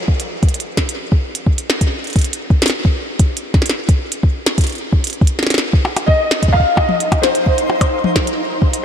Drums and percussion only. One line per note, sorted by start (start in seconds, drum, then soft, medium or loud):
0.08 kick loud
0.20 closed hi-hat medium
0.43 kick loud
0.43 closed hi-hat soft
0.49 closed hi-hat soft
0.54 closed hi-hat soft
0.60 closed hi-hat medium
0.77 kick loud
0.77 snare loud
0.89 closed hi-hat medium
1.12 kick loud
1.35 closed hi-hat medium
1.46 kick loud
1.58 closed hi-hat medium
1.70 snare loud
1.81 kick loud
1.81 closed hi-hat medium
2.04 closed hi-hat soft
2.07 closed hi-hat soft
2.10 closed hi-hat soft
2.13 kick loud
2.13 closed hi-hat soft
2.16 closed hi-hat soft
2.19 closed hi-hat soft
2.21 closed hi-hat soft
2.24 closed hi-hat soft
2.33 closed hi-hat medium
2.50 kick loud
2.62 snare loud
2.66 snare loud
2.66 closed hi-hat medium
2.70 snare medium
2.85 kick loud
3.19 kick loud
3.19 closed hi-hat medium
3.37 closed hi-hat medium
3.54 kick loud
3.54 snare medium
3.62 snare medium
3.62 closed hi-hat medium
3.70 snare loud
3.89 kick loud
3.89 closed hi-hat medium
4.12 closed hi-hat medium
4.23 kick loud
4.46 snare loud
4.58 kick loud
4.58 closed hi-hat medium
4.61 closed hi-hat soft
4.64 closed hi-hat soft
4.67 closed hi-hat soft
4.70 closed hi-hat soft
4.72 closed hi-hat soft
4.75 closed hi-hat soft
4.78 closed hi-hat soft
4.93 kick loud
5.04 closed hi-hat medium
5.07 closed hi-hat medium
5.10 closed hi-hat soft
5.21 kick loud
5.27 closed hi-hat medium
5.39 snare medium
5.43 snare medium
5.47 snare medium
5.50 snare medium
5.50 closed hi-hat medium
5.54 snare medium
5.58 snare loud
5.73 kick loud
5.85 percussion blips medium
5.97 closed hi-hat medium
5.97 percussion blips medium
6.08 kick loud
6.31 snare loud
6.43 kick loud
6.43 closed hi-hat medium
6.48 kick medium
6.54 kick medium
6.60 kick medium
6.77 kick loud
6.77 percussion blips medium
6.89 high tom medium
7.00 closed hi-hat medium
7.12 kick loud
7.12 closed hi-hat soft
7.12 percussion blips medium
7.23 snare loud
7.35 closed hi-hat medium
7.46 kick loud
7.58 closed hi-hat soft
7.70 percussion blips medium
7.81 kick loud
7.81 closed hi-hat medium
7.81 percussion blips medium
8.04 high tom loud
8.16 kick loud
8.16 snare loud
8.27 closed hi-hat medium
8.62 kick loud
8.73 closed hi-hat medium